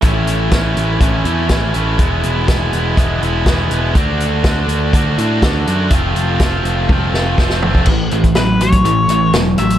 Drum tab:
CC |----------------|----------------|----------------|----------------|
HH |x-x-x-x-x-x-x-x-|x-x-x-x-x-x-x-x-|x-x-x-x-x-x-x-x-|x-x-x-x---------|
SD |----o-------o---|----o-------o---|----o-------o---|----o-----o-oo--|
T1 |----------------|----------------|----------------|--------o-------|
FT |----------------|----------------|----------------|--------------o-|
BD |o---o---o---o---|o---o---o---o---|o---o---o---o---|o---o---o---o--o|

CC |x---------------|
HH |--xxx-xxx-x-x-xx|
SD |----o-------o---|
T1 |----------------|
FT |----------------|
BD |o--o---o--------|